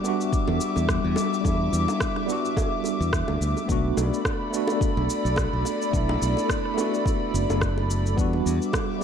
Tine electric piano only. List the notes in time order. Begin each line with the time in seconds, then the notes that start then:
Already playing: B3 D4 F#4
0.00 G3 B3
0.06 D4 F#4
1.41 G3 B3
1.46 D4 E4
2.26 G3 B3
2.30 D4 F#4
3.65 A3 B3
3.70 D4 F#4
4.50 A3 B3
4.54 D4 F#4
5.91 A3 B3
5.95 D4 E4
6.74 A3 B3
6.79 D4 F#4
8.15 G3 B3
8.19 D4 F#4
8.99 G3 B3